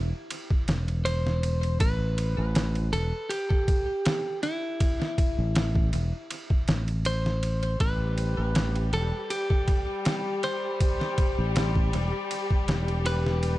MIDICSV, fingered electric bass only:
0, 0, Header, 1, 2, 480
1, 0, Start_track
1, 0, Key_signature, 0, "minor"
1, 0, Tempo, 750000
1, 1155, Time_signature, 4, 2, 24, 8
1, 8695, End_track
2, 0, Start_track
2, 0, Title_t, "Fingered electric bass"
2, 0, Program_c, 0, 33
2, 0, Note_on_c, 0, 28, 93
2, 70, Note_off_c, 0, 28, 0
2, 438, Note_on_c, 0, 28, 99
2, 1135, Note_off_c, 0, 28, 0
2, 1157, Note_on_c, 0, 33, 91
2, 1499, Note_off_c, 0, 33, 0
2, 1525, Note_on_c, 0, 33, 105
2, 1854, Note_off_c, 0, 33, 0
2, 1877, Note_on_c, 0, 28, 93
2, 1989, Note_off_c, 0, 28, 0
2, 3446, Note_on_c, 0, 33, 100
2, 3775, Note_off_c, 0, 33, 0
2, 3799, Note_on_c, 0, 28, 89
2, 3910, Note_off_c, 0, 28, 0
2, 4281, Note_on_c, 0, 33, 82
2, 4976, Note_off_c, 0, 33, 0
2, 4995, Note_on_c, 0, 33, 91
2, 5339, Note_off_c, 0, 33, 0
2, 5365, Note_on_c, 0, 33, 99
2, 5694, Note_off_c, 0, 33, 0
2, 5713, Note_on_c, 0, 28, 91
2, 5827, Note_off_c, 0, 28, 0
2, 7286, Note_on_c, 0, 33, 98
2, 7615, Note_off_c, 0, 33, 0
2, 7639, Note_on_c, 0, 28, 88
2, 7750, Note_off_c, 0, 28, 0
2, 8118, Note_on_c, 0, 28, 101
2, 8695, Note_off_c, 0, 28, 0
2, 8695, End_track
0, 0, End_of_file